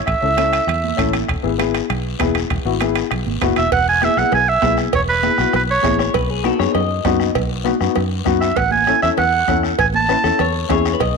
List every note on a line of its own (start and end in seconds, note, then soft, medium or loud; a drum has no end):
0.07 0.13 A1 medium
0.07 1.09 E5 loud
0.07 bombo low medium
0.07 bombo rim medium
0.07 high conga soft
0.07 high timbale medium
0.07 long guiro medium
0.21 0.59 C#2 medium
0.21 0.27 C#4 medium
0.21 0.28 E4 medium
0.21 0.28 A4 medium
0.37 0.59 C#4 medium
0.37 0.59 E4 medium
0.37 0.59 A4 medium
0.37 bombo rim medium
0.37 high conga medium
0.37 high timbale medium
0.37 short guiro medium
0.53 bombo rim medium
0.53 high timbale medium
0.53 short guiro medium
0.67 0.92 E2 medium
0.67 bombo rim medium
0.67 high conga soft
0.67 low conga medium
0.67 high timbale medium
0.67 long guiro medium
0.84 high conga medium
0.97 1.23 A1 medium
0.97 1.14 C#4 medium
0.97 1.14 E4 medium
0.97 1.14 A4 medium
0.97 bombo low medium
0.97 bombo rim medium
0.97 high conga medium
0.97 high timbale medium
0.97 short guiro medium
1.13 bombo rim medium
1.13 high conga medium
1.13 high timbale medium
1.13 short guiro medium
1.28 1.35 E1 medium
1.28 bombo low medium
1.28 bombo rim medium
1.28 high conga soft
1.28 high timbale medium
1.28 long guiro medium
1.43 1.80 G#1 medium
1.43 1.49 B3 medium
1.43 1.49 E4 medium
1.43 1.49 G#4 medium
1.58 1.80 B3 medium
1.58 1.80 E4 medium
1.58 1.80 G#4 medium
1.58 bombo rim medium
1.58 high conga medium
1.58 high timbale medium
1.58 short guiro medium
1.74 bombo rim medium
1.74 high timbale medium
1.74 short guiro medium
1.90 2.14 B1 medium
1.90 bombo rim medium
1.90 high conga soft
1.90 low conga medium
1.90 high timbale medium
1.90 long guiro medium
2.19 2.44 E1 medium
2.19 2.35 B3 medium
2.19 2.36 E4 medium
2.19 2.36 G#4 medium
2.19 bombo low medium
2.19 bombo rim medium
2.19 high conga medium
2.19 high timbale medium
2.19 low timbale medium
2.19 short guiro medium
2.35 bombo rim medium
2.35 high timbale medium
2.35 short guiro medium
2.50 2.56 E1 medium
2.50 bombo low medium
2.50 bombo rim medium
2.50 high conga soft
2.50 low conga medium
2.50 high timbale medium
2.50 long guiro medium
2.65 3.02 G#1 medium
2.65 2.71 B3 medium
2.65 2.71 E4 medium
2.65 2.71 F#4 medium
2.80 3.02 B3 medium
2.80 3.02 E4 medium
2.80 3.02 G#4 medium
2.80 bombo rim medium
2.80 high conga medium
2.80 high timbale medium
2.80 short guiro medium
2.95 bombo rim medium
2.95 high timbale medium
2.95 short guiro medium
3.11 3.23 B1 medium
3.11 bombo rim medium
3.11 high conga soft
3.11 low conga medium
3.11 high timbale medium
3.11 long guiro medium
3.26 3.40 G#1 medium
3.26 high conga medium
3.41 3.55 F#1 medium
3.41 3.57 B3 medium
3.41 3.58 E4 medium
3.41 3.58 F#4 medium
3.41 bombo low medium
3.41 bombo rim medium
3.41 high conga medium
3.41 low conga medium
3.41 high timbale medium
3.41 low timbale medium
3.41 short guiro medium
3.56 3.70 E1 medium
3.56 3.71 E5 medium
3.56 bombo rim medium
3.56 high conga medium
3.56 high timbale medium
3.56 short guiro medium
3.72 4.08 E1 medium
3.72 3.86 F#5 loud
3.72 bombo low medium
3.72 bombo rim medium
3.72 cowbell loud
3.72 long guiro medium
3.89 4.06 G#5 loud
4.02 4.07 B3 medium
4.02 4.07 E4 medium
4.02 4.08 G#4 medium
4.02 4.20 E5 loud
4.02 bombo rim medium
4.02 high conga medium
4.02 short guiro medium
4.17 4.23 B1 medium
4.17 4.33 B3 medium
4.17 4.33 E4 medium
4.17 4.34 G#4 medium
4.17 4.33 F#5 medium
4.17 bombo rim medium
4.17 short guiro medium
4.32 4.57 B1 medium
4.32 4.50 G#5 loud
4.32 bombo rim medium
4.32 cowbell medium
4.32 low conga medium
4.32 long guiro medium
4.49 4.78 E5 loud
4.62 4.87 B1 medium
4.62 4.84 B3 medium
4.62 4.84 E4 medium
4.62 4.84 G#4 medium
4.62 bombo low medium
4.62 bombo rim medium
4.62 high conga medium
4.62 low timbale medium
4.62 short guiro medium
4.77 bombo rim medium
4.77 short guiro medium
4.93 5.29 E1 medium
4.93 5.01 C#5 medium
4.93 bombo low medium
4.93 bombo rim medium
4.93 cowbell loud
4.93 low conga medium
4.93 long guiro medium
5.09 5.51 B4 medium
5.23 5.28 B3 medium
5.23 5.28 E4 medium
5.23 5.29 G#4 medium
5.23 bombo rim medium
5.23 high conga medium
5.23 short guiro medium
5.38 5.44 B1 medium
5.38 5.54 B3 medium
5.38 5.55 E4 medium
5.38 5.55 F#4 medium
5.38 bombo rim medium
5.38 short guiro medium
5.53 5.78 B1 medium
5.53 5.62 B4 medium
5.53 bombo rim medium
5.53 cowbell medium
5.53 low conga medium
5.53 long guiro medium
5.71 5.98 C#5 medium
5.82 6.08 A1 medium
5.82 6.04 B3 medium
5.82 6.05 E4 medium
5.82 6.05 G#4 medium
5.82 bombo low medium
5.82 bombo rim medium
5.82 high conga medium
5.82 low timbale medium
5.82 short guiro medium
5.99 6.14 C#5 medium
5.99 bombo rim medium
5.99 short guiro medium
6.14 6.51 B1 loud
6.14 6.30 B4 loud
6.14 bombo low medium
6.14 bombo rim medium
6.14 cowbell loud
6.14 low conga medium
6.14 long guiro medium
6.30 6.45 G#4 medium
6.44 6.50 B3 medium
6.44 6.50 D#4 medium
6.44 6.50 F#4 medium
6.44 6.60 A4 medium
6.44 bombo rim medium
6.44 high conga medium
6.44 short guiro medium
6.59 6.66 F#2 medium
6.59 6.75 B3 medium
6.59 6.75 D#4 medium
6.59 6.75 G#4 medium
6.59 6.74 C#5 medium
6.59 bombo rim medium
6.59 short guiro medium
6.75 6.99 F#2 medium
6.75 7.32 D#5 loud
6.75 bombo rim medium
6.75 cowbell medium
6.75 low conga medium
6.75 long guiro medium
7.05 7.29 F#2 medium
7.05 7.27 B3 medium
7.05 7.27 D#4 medium
7.05 7.27 F#4 loud
7.05 bombo low medium
7.05 bombo rim medium
7.05 high conga medium
7.05 low timbale medium
7.05 short guiro medium
7.20 bombo rim medium
7.20 short guiro medium
7.35 7.72 B1 medium
7.35 bombo low medium
7.35 bombo rim medium
7.35 cowbell loud
7.35 low conga medium
7.35 long guiro medium
7.64 7.70 B3 medium
7.64 7.71 D#4 medium
7.64 7.71 F#4 medium
7.64 bombo rim medium
7.64 high conga medium
7.64 short guiro medium
7.80 7.87 F#2 medium
7.80 7.97 B3 medium
7.80 7.97 D#4 medium
7.80 7.97 F#4 medium
7.80 bombo rim medium
7.80 short guiro medium
7.95 8.21 F#2 medium
7.95 bombo rim medium
7.95 cowbell medium
7.95 low conga medium
7.95 long guiro medium
8.25 8.51 F#2 medium
8.25 8.47 B3 medium
8.25 8.47 D#4 medium
8.25 8.48 F#4 medium
8.25 bombo low medium
8.25 bombo rim medium
8.25 high conga medium
8.25 short guiro medium
8.41 8.58 E5 medium
8.41 bombo rim medium
8.41 short guiro medium
8.56 8.94 A1 medium
8.56 8.71 F#5 medium
8.56 bombo low medium
8.56 bombo rim medium
8.56 cowbell loud
8.56 low conga medium
8.56 long guiro medium
8.71 9.00 G#5 medium
8.71 high conga medium
8.87 8.93 C#4 medium
8.87 8.93 E4 medium
8.87 8.93 A4 medium
8.87 bombo rim medium
8.87 high conga medium
8.87 short guiro medium
9.02 9.09 E2 medium
9.02 9.18 C#4 medium
9.02 9.19 E4 medium
9.02 9.19 A4 medium
9.02 9.09 E5 medium
9.02 bombo rim medium
9.02 short guiro medium
9.17 9.42 E2 medium
9.17 9.61 F#5 medium
9.17 bombo rim medium
9.17 cowbell medium
9.17 low conga medium
9.17 long guiro medium
9.48 9.72 E2 medium
9.48 9.70 C#4 medium
9.48 9.70 E4 medium
9.48 9.70 A4 medium
9.48 bombo low medium
9.48 bombo rim medium
9.48 high conga medium
9.48 short guiro medium
9.63 bombo rim medium
9.63 short guiro medium
9.79 10.15 A1 medium
9.79 9.86 G#5 loud
9.79 bombo low medium
9.79 bombo rim medium
9.79 cowbell loud
9.79 long guiro medium
9.94 10.52 A5 loud
9.94 high conga medium
10.09 10.14 C#4 medium
10.09 10.14 E4 medium
10.09 10.15 B4 medium
10.09 bombo rim medium
10.09 high conga medium
10.09 short guiro medium
10.24 10.30 E2 medium
10.24 10.40 C#4 medium
10.24 10.40 E4 medium
10.24 10.38 A4 medium
10.24 10.40 A4 medium
10.24 bombo rim medium
10.24 short guiro medium
10.39 10.64 E2 medium
10.39 10.69 C#5 loud
10.39 bombo rim medium
10.39 cowbell medium
10.39 low conga medium
10.39 long guiro medium
10.69 10.94 E2 medium
10.69 10.91 C#4 medium
10.69 10.91 E4 medium
10.69 10.91 G#4 loud
10.69 10.94 C#5 medium
10.69 bombo low medium
10.69 bombo rim medium
10.69 high conga medium
10.69 low timbale medium
10.69 short guiro medium
10.85 bombo rim medium
10.85 short guiro medium
10.94 11.01 B4 loud
11.00 11.17 B1 medium
11.00 11.17 D#5 loud
11.00 bombo low medium
11.00 bombo rim medium
11.00 cowbell loud
11.00 low conga medium
11.00 long guiro medium